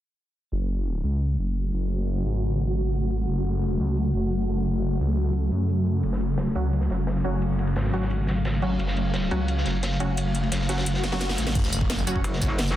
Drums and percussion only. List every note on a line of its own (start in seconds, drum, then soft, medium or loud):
0.52 closed hi-hat medium
0.69 closed hi-hat medium
0.86 closed hi-hat medium
1.04 closed hi-hat medium
1.21 closed hi-hat medium
1.38 closed hi-hat medium
1.55 closed hi-hat medium
1.73 closed hi-hat medium
1.90 closed hi-hat medium
2.07 closed hi-hat medium
2.24 closed hi-hat medium
2.41 closed hi-hat medium
2.59 closed hi-hat medium
2.76 closed hi-hat medium
2.93 closed hi-hat medium
3.10 closed hi-hat medium
3.28 closed hi-hat medium
3.45 closed hi-hat medium
3.62 closed hi-hat medium
3.79 closed hi-hat medium
3.97 closed hi-hat medium
4.14 closed hi-hat medium
4.31 closed hi-hat medium
4.48 closed hi-hat medium
4.66 closed hi-hat medium
4.83 closed hi-hat medium
5.00 closed hi-hat medium
5.17 closed hi-hat medium
5.35 closed hi-hat medium
5.52 closed hi-hat medium
5.69 closed hi-hat medium
5.86 closed hi-hat medium
6.03 closed hi-hat medium
6.03 ride medium
6.13 snare medium
6.21 closed hi-hat medium
6.21 ride medium
6.38 snare loud
6.38 closed hi-hat medium
6.38 ride medium
6.55 closed hi-hat medium
6.55 ride medium
6.72 closed hi-hat medium
6.72 ride medium
6.81 snare soft
6.90 snare medium
6.90 closed hi-hat medium
6.90 ride medium
7.07 snare loud
7.07 closed hi-hat medium
7.07 ride medium
7.16 snare soft
7.24 closed hi-hat medium
7.24 ride medium
7.41 closed hi-hat medium
7.41 ride medium
7.59 closed hi-hat medium
7.59 ride medium
7.67 ride soft
7.76 snare loud
7.76 closed hi-hat medium
7.76 ride medium
7.84 snare soft
7.93 snare medium
7.93 closed hi-hat medium
7.93 ride medium
8.02 snare soft
8.10 closed hi-hat medium
8.10 ride medium
8.27 snare soft
8.27 closed hi-hat medium
8.27 ride medium
8.45 snare loud
8.45 closed hi-hat medium
8.45 ride medium
8.54 ride soft
8.62 closed hi-hat medium
8.62 open hi-hat medium
8.79 closed hi-hat medium
8.79 ride medium
8.87 snare soft
8.97 closed hi-hat medium
8.97 ride medium
9.14 snare loud
9.14 closed hi-hat medium
9.14 ride medium
9.31 closed hi-hat medium
9.31 ride medium
9.48 closed hi-hat loud
9.48 ride medium
9.57 snare soft
9.65 snare medium
9.65 closed hi-hat medium
9.65 ride medium
9.83 snare loud
9.83 closed hi-hat medium
9.83 ride medium
9.92 snare soft
10.00 closed hi-hat medium
10.00 ride medium
10.17 closed hi-hat medium
10.17 ride medium
10.35 closed hi-hat medium
10.35 ride medium
10.43 ride soft
10.52 snare loud
10.52 closed hi-hat loud
10.52 ride medium
10.61 snare soft
10.69 snare loud
10.69 closed hi-hat medium
10.69 ride medium
10.78 snare loud
10.78 ride medium
10.86 closed hi-hat medium
10.86 ride medium
10.94 snare soft
11.04 snare medium
11.04 snare loud
11.04 closed hi-hat medium
11.04 ride medium
11.12 snare loud
11.12 snare medium
11.12 ride medium
11.20 snare loud
11.20 snare medium
11.20 closed hi-hat medium
11.20 ride medium
11.29 snare medium
11.29 snare loud
11.29 ride medium
11.38 snare medium
11.38 closed hi-hat medium
11.38 ride medium
11.47 snare loud
11.47 snare medium
11.47 ride medium
11.55 kick loud
11.55 closed hi-hat loud
11.55 crash loud
11.55 ride medium
11.64 snare medium
11.64 tambourine soft
11.72 closed hi-hat medium
11.72 ride medium
11.72 tambourine medium
11.81 kick loud
11.89 snare loud
11.89 closed hi-hat loud
11.89 ride medium
11.99 tambourine soft
12.07 closed hi-hat medium
12.07 ride medium
12.07 tambourine medium
12.16 kick medium
12.24 closed hi-hat medium
12.24 ride medium
12.33 snare soft
12.41 kick loud
12.41 snare medium
12.41 closed hi-hat medium
12.41 ride medium
12.41 tambourine medium
12.58 snare loud
12.58 closed hi-hat loud
12.58 ride medium
12.67 snare soft
12.67 tambourine soft